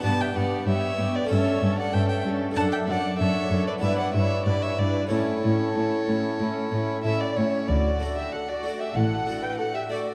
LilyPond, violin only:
\new Staff \with { instrumentName = "Violin" } { \time 4/4 \key d \major \tempo 4 = 95 a''16 g''16 fis''8 e''8. d''16 e''8. fis''16 g''16 g''16 r8 | a''16 g''16 fis''8 e''8. d''16 e''16 fis''16 e''8 d''16 e''16 d''8 | cis''2. e''16 d''16 cis''8 | d''8. e''16 fis''16 d''8 e''16 fis''8. g''16 fis''16 e''16 d''8 | }